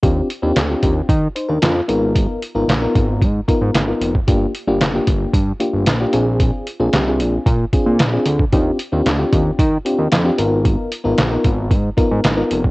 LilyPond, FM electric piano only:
\new Staff \with { instrumentName = "FM electric piano" } { \time 4/4 \key ees \major \tempo 4 = 113 << { r2 r8 <ees' c''>16 <d' bes'>8 f'8 r16 | r1 | r1 | r1 |
r1 | r1 | } \\ { <c' d' f' g'>8 r16 <c' d' f' g'>16 r16 <c' d' f' g'>8. r4. <ces' ees' f' bes'>8~ | <ces' ees' f' bes'>8 r16 <ces' ees' f' bes'>16 r16 <ces' ees' f' bes'>8. r8 <ces' ees' f' bes'>8 r16 <ces' ees' f' bes'>8 r16 | <bes d' f' g'>8 r16 <bes d' f' g'>16 r16 <bes d' f' g'>8. r8 <bes d' f' g'>8 r16 <bes d' f' g'>16 <c' d' f' aes'>8~ | <c' d' f' aes'>8 r16 <c' d' f' aes'>16 r16 <c' d' f' aes'>8. r8 <c' d' f' aes'>8 r16 <c' d' f' aes'>8 r16 |
<c' d' f' g'>8 r16 <c' d' f' g'>16 r16 <c' d' f' g'>8. r8 <c' d' f' g'>8 r16 <c' d' f' g'>16 <ces' ees' f' bes'>8~ | <ces' ees' f' bes'>8 r16 <ces' ees' f' bes'>16 r16 <ces' ees' f' bes'>8. r8 <ces' ees' f' bes'>8 r16 <ces' ees' f' bes'>8 r16 | } >> }